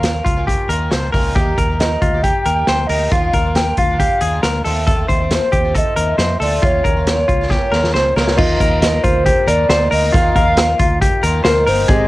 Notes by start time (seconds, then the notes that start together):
Already playing: D#2 A#3 C#4 F4 A#4 F5
0.03 snare, closed hi-hat
0.24 C#2 F4, kick, closed hi-hat
0.36 A#3 C#4 F4
0.47 G4, kick, closed hi-hat
0.69 D#2 D#3 A#3 C#4 F4 A#4, closed hi-hat
0.91 C#2 C5, snare, closed hi-hat
1.12 C#2 D#3 A#3 C#4 F4 A#4, kick, open hi-hat
1.35 D#2 D#3 A#3 D#4 G4, kick, closed hi-hat
1.57 D#2 A#4, kick, closed hi-hat
1.69 A#3 D#4 G4
1.80 D#5, snare, closed hi-hat
2.02 D2 F4, kick, closed hi-hat
2.14 A#3 D#4 G4
2.23 G4 G5, kick, closed hi-hat
2.46 D#2 D#3 A#3 D#4 G4 A#4, closed hi-hat
2.55 G5
2.67 D2 C5, snare, closed hi-hat
2.87 D2 D#3 A#3 A#4 D#5, open hi-hat
2.91 D#4 G4
3.11 D#2 D#3 A#3 D4 F4 F5, kick, closed hi-hat
3.33 D#2 A#4, kick, closed hi-hat
3.45 A#3 D4 F4
3.55 G5, snare, closed hi-hat
3.77 D2 F4 F5, kick, closed hi-hat
3.90 A#3 D4 F4
4.00 G4, kick, closed hi-hat
4.21 D#2 D#3 A#3 D4 F4 G#4, closed hi-hat
4.43 D2 A#4, snare, closed hi-hat
4.65 D#2 D#3 A3 C4 F4 A4, open hi-hat
4.87 D#3 A3 C4 F4 A4, kick, closed hi-hat
5.08 D#2 C5, kick, closed hi-hat
5.21 A3 C4 F4
5.31 C5, snare, closed hi-hat
5.52 D#2 G4, kick, closed hi-hat
5.64 A3 C4 F4
5.74 A4 D#5, kick, closed hi-hat
5.96 D#2 D#3 A3 C4 F4 A#4, closed hi-hat
6.18 F2 C5, snare, closed hi-hat
6.40 D2 D#3 A3 C4 F4 A4 D5, open hi-hat
6.62 D#2 D#3 A#3 C#4 F4 C#5, kick, closed hi-hat
6.66 F4
6.84 D#2 A#4, kick, closed hi-hat
6.96 A#3 C#4 F4
7.07 snare, closed hi-hat
7.28 C#2 F4, kick, closed hi-hat
7.41 A#3 C#4 F4
7.50 G4, kick, snare
7.72 D#2 D#3 A#3 C#4 A#4, snare
7.76 F4
7.84 snare
7.94 C#2 C5, snare
8.16 C#2 D#3 A#3 C#4 F4 A#4 C#5, snare
8.27 snare
8.37 D#2 D#3 A#3 D#4 F4 D#5, kick, crash
8.60 D#2 A#4, kick, closed hi-hat
8.70 A#3 D#4 F4
8.82 D#5, snare, closed hi-hat
9.03 D2 F4 C5, kick, closed hi-hat
9.26 G4, kick, closed hi-hat
9.47 D#2 D#3 A#3 D#4 F4 A#4 D5, closed hi-hat
9.69 D2 D#3 A#3 D#4 F4 C5, snare, closed hi-hat
9.91 D2 D#3 A#3 D#4 F4 A#4 D#5, open hi-hat
10.13 D#2 D#3 A#3 D#4 F4 F5, kick, closed hi-hat
10.35 D#2 A#4 F5, kick, closed hi-hat
10.48 A#3 D#4 F4
10.57 snare, closed hi-hat
10.79 D2 F4, kick, closed hi-hat
11.02 G4, kick, closed hi-hat
11.23 D#2 D#3 A#3 D#4 F4 A#4, closed hi-hat
11.44 D2 D#3 A#3 D#4 F4 A#4 C5, snare, closed hi-hat
11.67 G1 D#3 A#3 D#4 F4 A#4 C5, open hi-hat
11.88 G#1 G#3 C4 D#4 G4 G#4 D#5, kick, closed hi-hat